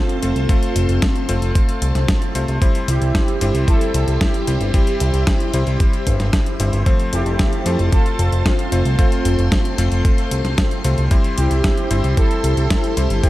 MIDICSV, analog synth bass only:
0, 0, Header, 1, 2, 480
1, 0, Start_track
1, 0, Key_signature, -1, "major"
1, 0, Tempo, 530973
1, 446, Time_signature, 4, 2, 24, 8
1, 12018, End_track
2, 0, Start_track
2, 0, Title_t, "Analog synth bass"
2, 0, Program_c, 0, 38
2, 205, Note_on_c, 0, 29, 95
2, 302, Note_off_c, 0, 29, 0
2, 325, Note_on_c, 0, 36, 80
2, 422, Note_off_c, 0, 36, 0
2, 685, Note_on_c, 0, 29, 89
2, 782, Note_off_c, 0, 29, 0
2, 805, Note_on_c, 0, 29, 81
2, 902, Note_off_c, 0, 29, 0
2, 1165, Note_on_c, 0, 29, 95
2, 1262, Note_off_c, 0, 29, 0
2, 1285, Note_on_c, 0, 29, 83
2, 1382, Note_off_c, 0, 29, 0
2, 1644, Note_on_c, 0, 36, 93
2, 1742, Note_off_c, 0, 36, 0
2, 1765, Note_on_c, 0, 36, 82
2, 1862, Note_off_c, 0, 36, 0
2, 2124, Note_on_c, 0, 36, 93
2, 2222, Note_off_c, 0, 36, 0
2, 2244, Note_on_c, 0, 36, 83
2, 2342, Note_off_c, 0, 36, 0
2, 2604, Note_on_c, 0, 36, 88
2, 2702, Note_off_c, 0, 36, 0
2, 2725, Note_on_c, 0, 36, 84
2, 2823, Note_off_c, 0, 36, 0
2, 3085, Note_on_c, 0, 31, 96
2, 3182, Note_off_c, 0, 31, 0
2, 3204, Note_on_c, 0, 36, 81
2, 3302, Note_off_c, 0, 36, 0
2, 3564, Note_on_c, 0, 36, 94
2, 3662, Note_off_c, 0, 36, 0
2, 3685, Note_on_c, 0, 36, 82
2, 3783, Note_off_c, 0, 36, 0
2, 4045, Note_on_c, 0, 36, 92
2, 4142, Note_off_c, 0, 36, 0
2, 4165, Note_on_c, 0, 31, 79
2, 4262, Note_off_c, 0, 31, 0
2, 4525, Note_on_c, 0, 36, 90
2, 4623, Note_off_c, 0, 36, 0
2, 4645, Note_on_c, 0, 36, 79
2, 4743, Note_off_c, 0, 36, 0
2, 5005, Note_on_c, 0, 36, 94
2, 5103, Note_off_c, 0, 36, 0
2, 5125, Note_on_c, 0, 36, 82
2, 5222, Note_off_c, 0, 36, 0
2, 5485, Note_on_c, 0, 31, 92
2, 5582, Note_off_c, 0, 31, 0
2, 5604, Note_on_c, 0, 31, 83
2, 5702, Note_off_c, 0, 31, 0
2, 5964, Note_on_c, 0, 31, 97
2, 6062, Note_off_c, 0, 31, 0
2, 6083, Note_on_c, 0, 31, 81
2, 6182, Note_off_c, 0, 31, 0
2, 6444, Note_on_c, 0, 29, 91
2, 6542, Note_off_c, 0, 29, 0
2, 6563, Note_on_c, 0, 29, 82
2, 6662, Note_off_c, 0, 29, 0
2, 6924, Note_on_c, 0, 41, 93
2, 7022, Note_off_c, 0, 41, 0
2, 7044, Note_on_c, 0, 29, 82
2, 7142, Note_off_c, 0, 29, 0
2, 7404, Note_on_c, 0, 29, 91
2, 7502, Note_off_c, 0, 29, 0
2, 7525, Note_on_c, 0, 29, 82
2, 7622, Note_off_c, 0, 29, 0
2, 7884, Note_on_c, 0, 29, 93
2, 7982, Note_off_c, 0, 29, 0
2, 8004, Note_on_c, 0, 36, 80
2, 8102, Note_off_c, 0, 36, 0
2, 8365, Note_on_c, 0, 29, 89
2, 8462, Note_off_c, 0, 29, 0
2, 8485, Note_on_c, 0, 29, 82
2, 8583, Note_off_c, 0, 29, 0
2, 8844, Note_on_c, 0, 29, 96
2, 8942, Note_off_c, 0, 29, 0
2, 8964, Note_on_c, 0, 29, 84
2, 9062, Note_off_c, 0, 29, 0
2, 9324, Note_on_c, 0, 36, 92
2, 9422, Note_off_c, 0, 36, 0
2, 9444, Note_on_c, 0, 36, 80
2, 9542, Note_off_c, 0, 36, 0
2, 9805, Note_on_c, 0, 36, 93
2, 9903, Note_off_c, 0, 36, 0
2, 9926, Note_on_c, 0, 36, 80
2, 10023, Note_off_c, 0, 36, 0
2, 10286, Note_on_c, 0, 36, 91
2, 10383, Note_off_c, 0, 36, 0
2, 10405, Note_on_c, 0, 36, 83
2, 10503, Note_off_c, 0, 36, 0
2, 10765, Note_on_c, 0, 31, 95
2, 10863, Note_off_c, 0, 31, 0
2, 10886, Note_on_c, 0, 36, 86
2, 10983, Note_off_c, 0, 36, 0
2, 11245, Note_on_c, 0, 36, 93
2, 11343, Note_off_c, 0, 36, 0
2, 11365, Note_on_c, 0, 36, 82
2, 11462, Note_off_c, 0, 36, 0
2, 11726, Note_on_c, 0, 36, 95
2, 11823, Note_off_c, 0, 36, 0
2, 11845, Note_on_c, 0, 31, 82
2, 11943, Note_off_c, 0, 31, 0
2, 12018, End_track
0, 0, End_of_file